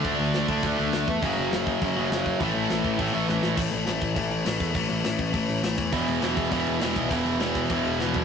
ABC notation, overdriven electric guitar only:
X:1
M:4/4
L:1/8
Q:1/4=204
K:A
V:1 name="Overdriven electric guitar" clef=bass
[D,A,D]3 [D,A,D]4 z | [F,,C,F,]4 [F,,C,F,]4 | [A,,E,A,]4 [A,,E,A,]4 | [K:E] [A,,E,A,]2 [A,,E,A,]2 [A,,E,A,]2 [A,,E,A,]2 |
[A,,E,A,]2 [A,,E,A,]2 [A,,E,A,]2 [A,,E,A,]2 | [E,,B,,E,]2 [E,,B,,E,]2 [E,,B,,E,]2 [E,,B,,E,]2 | [E,,B,,E,]2 [E,,B,,E,]2 [E,,B,,E,]2 [E,,B,,E,]2 |]